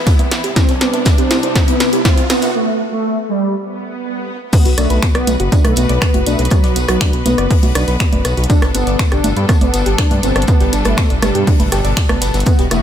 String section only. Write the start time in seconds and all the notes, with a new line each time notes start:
Already playing: E3 B3 E4
0.56 C3 G3 D4
4.53 B3 F#4 B4
8.50 G3 D4 A4
12.46 E3 B3 F#4